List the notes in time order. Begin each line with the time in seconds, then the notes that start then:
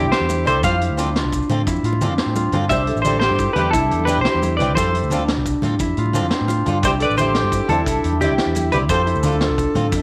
Already playing: C4 D4 E4 G4 A4
0.03 C2
0.12 E4 G4 C5, snare, closed hi-hat
0.20 E2
0.29 E4, closed hi-hat, high conga, maracas
0.39 low conga
0.45 C2 G3 C4 E4 G4 A4 C5, closed hi-hat, low conga, maracas
0.63 F2 F3 C4 F4 A4 C5 F5, kick, closed hi-hat, high conga, maracas
0.81 E4, closed hi-hat
0.90 D2
0.97 F3 C4 D4 F4 A4, closed hi-hat, maracas
1.07 high conga
1.15 F4, snare, closed hi-hat
1.25 C2
1.32 kick, closed hi-hat, maracas
1.42 maracas
1.49 A2 F3 C4 F4 A4, closed hi-hat, high conga, low conga, maracas
1.67 F2 E4, kick, closed hi-hat, maracas
1.83 A2 F4, closed hi-hat, low conga, maracas
1.93 high conga
2.01 F3 C4 D4 F4 A4, closed hi-hat, low conga, maracas
2.10 F2
2.18 C4, snare, closed hi-hat, low conga, maracas
2.26 A2
2.35 F4, closed hi-hat, high conga, low conga, maracas
2.52 G2 F3 C4 D4 F4 A4, closed hi-hat, low conga
2.69 C2 G3 C4 E4 G4 C5 E5, kick, closed hi-hat, high conga, maracas
2.87 A4, closed hi-hat
2.95 A1, maracas
3.02 G3 A4 C5, closed hi-hat, low conga, maracas
3.06 C4 E4 G4
3.13 high conga
3.20 G4 C5, snare, closed hi-hat
3.30 G2
3.38 E4, kick, closed hi-hat, maracas
3.53 E2 G3 D4 G4 B4, closed hi-hat, high conga, low conga
3.57 C4 E4 G4
3.65 low conga
3.71 C2 E4 A4, kick, closed hi-hat, maracas
3.90 E2 G4, closed hi-hat
3.99 high conga
4.05 G3 C4 G4 B4, closed hi-hat, low conga, maracas
4.10 E4 G4
4.17 C2 C5
4.23 E4 G4, snare, closed hi-hat
4.35 E2
4.42 E4, closed hi-hat, high conga, maracas
4.51 low conga
4.57 C2 G3 G4 B4 D5, closed hi-hat, low conga
4.61 C4 E4 G4, maracas
4.75 F2 F3 C4 F4 A4 C5, kick, closed hi-hat, high conga, maracas
4.94 E4, closed hi-hat
5.03 D2, maracas
5.10 F3 C4 D4 F4 A4, closed hi-hat, low conga, maracas
5.19 high conga
5.28 snare, closed hi-hat
5.38 C2
5.46 kick, closed hi-hat, maracas
5.62 A2 F3 C4 F4 A4, closed hi-hat, high conga, low conga
5.71 low conga
5.79 F2 E4, kick, closed hi-hat, maracas
5.97 A2 F4, closed hi-hat
6.06 high conga
6.13 F3 C4 D4 F4 A4, closed hi-hat, low conga, maracas
6.23 F2
6.31 C4, snare, closed hi-hat, low conga
6.41 A2
6.48 F4, closed hi-hat, high conga, maracas
6.58 low conga
6.65 G2 F3 D4 F4 A4, closed hi-hat, low conga, maracas
6.82 C2 G3 C4 E4 G4 C5, kick, closed hi-hat, high conga, maracas
6.87 G4
7.00 A4 D5, closed hi-hat
7.04 B4
7.10 A1, maracas
7.17 C4 E4 C5, muted steel-string acoustic guitar stroke, closed hi-hat, low conga, maracas
7.21 G4
7.26 high conga
7.34 G4, snare, closed hi-hat
7.43 G2
7.51 E4, kick, closed hi-hat, maracas
7.68 E2 G3 C4 D4 E4 A4, closed hi-hat, high conga, low conga
7.73 muted steel-string acoustic guitar stroke
7.78 low conga
7.86 C2 E4, kick, closed hi-hat, maracas
8.04 E2 G4, closed hi-hat
8.12 high conga
8.21 G3 C4 E4 G4, closed hi-hat, low conga, maracas
8.30 C2
8.38 E4, snare, closed hi-hat, low conga
8.46 E2
8.55 E4, closed hi-hat, high conga, maracas
8.64 low conga
8.72 C2 G3 C4 E4 G4 B4, closed hi-hat, low conga, maracas
8.89 F2 C4 F4 A4 C5, kick, closed hi-hat, high conga, maracas
9.06 E4, closed hi-hat
9.15 D2, maracas
9.23 D4 F4 A4, muted steel-string acoustic guitar stroke, closed hi-hat, low conga, maracas
9.32 high conga, maracas
9.41 F4, snare, closed hi-hat
9.49 C2
9.58 kick, closed hi-hat, maracas
9.75 A2 C4 F4 A4, closed hi-hat, high conga, low conga, maracas
9.92 F2 E4, kick, closed hi-hat, maracas